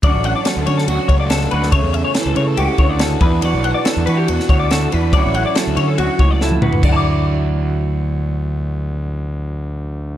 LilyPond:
<<
  \new Staff \with { instrumentName = "Clean electric guitar" } { \time 4/4 \key d \major \tempo 4 = 141 d''8 fis''16 d''16 a'8 cis''16 a'16 fis'8 cis''16 d''16 a'8 b'8 | cis''8 e''16 cis''16 a'8 cis''16 a'16 g'8 cis''16 d''16 a'8 b'8 | d''8 fis''16 d''16 a'8 b'16 g'16 fis'8 cis''16 d''16 a'8 b'8 | d''8 fis''16 d''16 a'8 cis''16 a'16 fis'8 cis''16 d''16 a'8 b'8 |
<d'' fis'' a'' d'''>1~ | <d'' fis'' a'' d'''>1 | }
  \new Staff \with { instrumentName = "Clean electric guitar" } { \time 4/4 \key d \major << { <fis cis' d' fis'>8 d'4 cis'8 fis'4 d'8 fis'16 a'16 | a8 cis'4 a8 fis'4 cis'8 d'8 | fis'4 d'8 fis'4 fis'8 fis'8 d'8 | <fis cis' e' fis'>8 e'4 cis'8 fis'4 e'8 fis'8 |
<fis e' fis'>1~ | <fis e' fis'>1 | } \\ { r4 fis4. a,4. | cis4 e4. cis4 e8~ | e8 b4. b,4. e8 | r4 fis4. a,4. |
d1~ | d1 | } >> }
  \new Staff \with { instrumentName = "Picked electric bass" } { \clef bass \time 4/4 \key d \major d,16 a,,8 r8 d,16 d8 d,16 r16 cis,4 d,8 | cis,16 e,8 r8 cis,16 cis8 cis,16 r16 d,4 e,8 | e,16 b,,8 r8 e,16 e8 e,16 r16 d,4 e,8 | d,16 a,,8 r8 d,16 d8 d,16 r16 cis,4 d,8 |
d,1~ | d,1 | }
  \new DrumStaff \with { instrumentName = "Drums" } \drummode { \time 4/4 <bd cymr>8 cymr8 <cymr sn>8 cymr16 sn16 cymr8 <bd cymr>8 <cymr sn>16 sn16 cymr16 sn16 | <bd cymr>8 cymr8 <cymr sn>8 cymr8 cymr8 <bd cymr>8 <cymr sn>8 <bd cymr>8 | cymr8 cymr8 <cymr sn>8 cymr8 cymr16 sn16 <bd cymr>8 <cymr sn>8 cymr8 | <bd cymr>8 cymr8 <cymr sn>8 cymr8 cymr8 <bd cymr>8 sn16 tommh16 toml16 tomfh16 |
<cymc bd>4 r4 r4 r4 | r4 r4 r4 r4 | }
>>